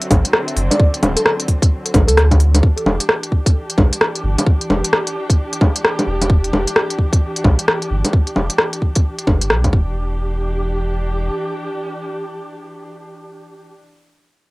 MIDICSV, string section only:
0, 0, Header, 1, 2, 480
1, 0, Start_track
1, 0, Key_signature, 1, "minor"
1, 0, Tempo, 458015
1, 834, Time_signature, 4, 2, 24, 8
1, 15203, End_track
2, 0, Start_track
2, 0, Title_t, "String section"
2, 0, Program_c, 0, 48
2, 0, Note_on_c, 0, 50, 82
2, 0, Note_on_c, 0, 54, 71
2, 0, Note_on_c, 0, 60, 79
2, 2710, Note_off_c, 0, 54, 0
2, 2718, Note_off_c, 0, 50, 0
2, 2721, Note_off_c, 0, 60, 0
2, 2758, Note_on_c, 0, 52, 78
2, 2760, Note_on_c, 0, 62, 75
2, 2761, Note_on_c, 0, 67, 88
2, 10154, Note_off_c, 0, 52, 0
2, 10156, Note_off_c, 0, 62, 0
2, 10156, Note_off_c, 0, 67, 0
2, 10192, Note_on_c, 0, 67, 82
2, 10194, Note_on_c, 0, 52, 70
2, 10196, Note_on_c, 0, 62, 66
2, 14391, Note_off_c, 0, 67, 0
2, 14392, Note_off_c, 0, 52, 0
2, 14394, Note_off_c, 0, 62, 0
2, 15203, End_track
0, 0, End_of_file